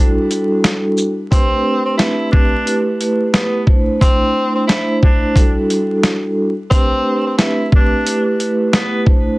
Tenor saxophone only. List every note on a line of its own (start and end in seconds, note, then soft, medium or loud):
0.00 0.14 D4 medium
1.32 1.83 C4 loud
1.85 1.97 C4 medium
1.97 2.28 E4 medium
2.32 2.83 D4 medium
3.33 3.64 B3 medium
4.02 4.53 C4 loud
4.55 4.66 C4 medium
4.67 4.98 E4 medium
5.04 5.54 D4 medium
6.71 7.22 C4 loud
7.27 7.37 C4 medium
7.38 7.68 E4 medium
7.75 8.25 D4 medium
8.73 9.04 B3 medium